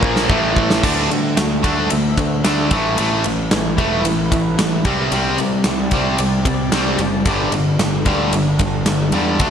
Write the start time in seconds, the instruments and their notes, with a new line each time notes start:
Already playing: picked electric bass A#1, distorted electric guitar A#2 F3 A#3, analog synth pad A#3 F4 C5
0.03 kick
0.16 snare
0.29 picked electric bass A1, distorted electric guitar A2 E3 A3, analog synth pad A3 E4 B4, kick
0.56 kick
0.70 snare
0.82 picked electric bass D2, distorted electric guitar D3 A3 D4, analog synth pad D4 A4 E5, kick, crash
1.10 distorted electric guitar D3 A3, picked electric bass D3, ride
1.37 picked electric bass D2, distorted electric guitar D3 A3, snare, ride
1.63 distorted electric guitar D3 A3 D4, kick, ride
1.90 picked electric bass D2, distorted electric guitar D3 A3, ride
2.18 distorted electric guitar D3 A3, kick, ride
2.44 picked electric bass D2, distorted electric guitar D3 A3 D4, snare, ride
2.71 picked electric bass A1, distorted electric guitar A2 E3 A3, analog synth pad A3 E4 B4, kick, ride
2.97 picked electric bass A1, distorted electric guitar A2 E3 A3, ride
3.24 picked electric bass A1, distorted electric guitar A2 E3, ride
3.51 picked electric bass A1, distorted electric guitar A2 E3, snare, ride
3.77 picked electric bass E1, distorted electric guitar A2 E3 A3, kick, ride
4.05 picked electric bass A1, distorted electric guitar A2 E3, ride
4.31 distorted electric guitar A2 E3, kick, ride
4.58 picked electric bass A1, distorted electric guitar A2 E3, snare, ride
4.85 picked electric bass C2, distorted electric guitar C3 G3 C4, analog synth pad C4 G4 D5, kick, ride
5.12 picked electric bass C2, distorted electric guitar C3 G3 C4, ride
5.38 picked electric bass C3, distorted electric guitar C3 G3, ride
5.64 picked electric bass C2, distorted electric guitar C3 G3, snare, ride
5.91 distorted electric guitar C3 G3 C4, kick, ride
6.18 picked electric bass C2, distorted electric guitar C3 G3, ride
6.45 distorted electric guitar C3 G3, kick, ride
6.72 picked electric bass C2, distorted electric guitar C3 G3 C4, snare, ride
6.98 picked electric bass F#1, distorted electric guitar C3 G3, ride
7.25 picked electric bass G1, distorted electric guitar G2 D3 G3, analog synth pad G3 D4 A4, kick, ride
7.51 picked electric bass G1, distorted electric guitar G2 D3, ride
7.78 picked electric bass G1, distorted electric guitar G2 D3, snare, ride
8.05 picked electric bass D2, distorted electric guitar G2 D3 G3, kick, ride
8.31 picked electric bass G1, distorted electric guitar G2 D3, ride
8.59 distorted electric guitar G2 D3, kick, ride
8.85 picked electric bass G1, distorted electric guitar G2 D3, snare, ride
9.12 picked electric bass E2, distorted electric guitar G2 D3 G3, ride
9.39 picked electric bass D2, distorted electric guitar D3 A3 D4, analog synth pad D4 E5, kick, ride